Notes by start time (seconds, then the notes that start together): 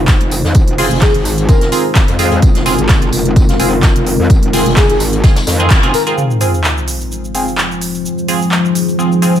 Already playing: G#3 C4 D#4 F4 G#4 C5
0.08 F1, kick, snare, clap, closed hi-hat, tambourine
0.21 F1, closed hi-hat
0.31 open hi-hat, tambourine
0.44 F2, snare
0.55 F1, kick, closed hi-hat, tambourine
0.68 closed hi-hat
0.78 C4 F4 G#4, open hi-hat
0.91 F1, closed hi-hat
1.01 G#4, kick, snare, clap, closed hi-hat, tambourine
1.14 G#1, closed hi-hat
1.25 open hi-hat, tambourine
1.38 closed hi-hat
1.49 F1 C4 F4 G#4 A#4, kick, closed hi-hat, tambourine
1.61 snare, closed hi-hat
1.72 C4 F4 G#4, open hi-hat, tambourine
1.95 F1, kick, snare, clap, closed hi-hat, tambourine
2.08 F2, closed hi-hat
2.19 C4 F4 G#4, open hi-hat, tambourine
2.31 F2, closed hi-hat
2.42 F1 A#4, kick, closed hi-hat, tambourine
2.55 snare, closed hi-hat
2.66 C4 F4 G#4, open hi-hat, tambourine
2.78 G#1, closed hi-hat
2.89 kick, snare, clap, closed hi-hat, tambourine
3.02 closed hi-hat
3.12 F1, open hi-hat, tambourine
3.25 closed hi-hat
3.36 kick, closed hi-hat, tambourine
3.49 F4, snare, closed hi-hat
3.59 F1 C4 F4 G#4, open hi-hat, tambourine
3.83 F1, kick, snare, clap, closed hi-hat, tambourine
3.96 F1, closed hi-hat
4.07 open hi-hat
4.19 F2
4.30 F1, kick, closed hi-hat, tambourine
4.43 closed hi-hat
4.53 C4 F4 G#4, open hi-hat
4.66 F1, closed hi-hat
4.76 G#4, kick, snare, clap, closed hi-hat, tambourine
4.89 G#1 G#4, closed hi-hat
5.00 open hi-hat, tambourine
5.13 closed hi-hat
5.23 C4 F4 G#4, kick, snare, closed hi-hat, tambourine
5.36 snare, closed hi-hat, tambourine
5.47 F2, snare, open hi-hat, tambourine
5.60 C4 F4 G#4, closed hi-hat
5.70 F1, kick, snare, clap, closed hi-hat, tambourine
5.83 F1 C4 F4 G#4, closed hi-hat
5.94 A#4, open hi-hat, tambourine
6.07 C4 F4 G#4 A#4, closed hi-hat
6.17 F3 G#3 C4 F4 C5, sub drop, shaker
6.31 shaker
6.38 C4 D#4 F4 G#4, open hi-hat, shaker
6.54 shaker
6.64 C5, clap, shaker
6.77 shaker
6.88 open hi-hat, shaker
7.01 shaker
7.12 shaker
7.24 shaker
7.35 C4 F4 G#4, open hi-hat, shaker
7.48 shaker
7.58 clap, shaker
7.71 shaker
7.81 open hi-hat, shaker
7.95 shaker
8.05 shaker
8.18 shaker
8.28 C4 F4 G#4, open hi-hat, shaker
8.42 shaker
8.52 clap, shaker
8.65 shaker
8.75 open hi-hat, shaker
8.89 shaker
8.99 C4 F4 G#4, shaker
9.12 shaker
9.22 C4 F4 G#4, open hi-hat, shaker
9.35 shaker